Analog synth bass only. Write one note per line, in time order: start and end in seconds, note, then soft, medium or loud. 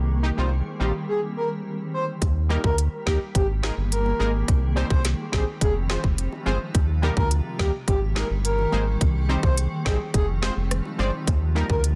0.00 0.31 C2 loud
0.38 0.62 C2 medium
0.80 0.92 A#1 medium
2.22 2.58 D#2 loud
2.64 2.88 D2 loud
3.07 3.19 D#2 loud
3.35 3.71 G#1 loud
3.77 4.13 G1 medium
4.20 4.44 G#1 loud
4.48 4.84 C2 loud
4.90 5.15 C2 medium
5.33 5.45 A#1 loud
5.61 5.97 F1 loud
6.04 6.28 F1 medium
6.46 6.58 G1 medium
6.75 7.11 D#2 loud
7.17 7.41 D2 loud
7.59 7.71 D#2 loud
7.88 8.24 G#1 loud
8.30 8.66 G1 medium
8.73 8.97 G#1 loud
9.01 9.37 C2 loud
9.43 9.67 C2 medium
9.86 9.98 A#1 medium
10.14 10.50 F1 loud
10.57 10.81 F1 medium
10.99 11.11 G1 medium
11.27 11.63 D#2 loud
11.70 11.94 D2 loud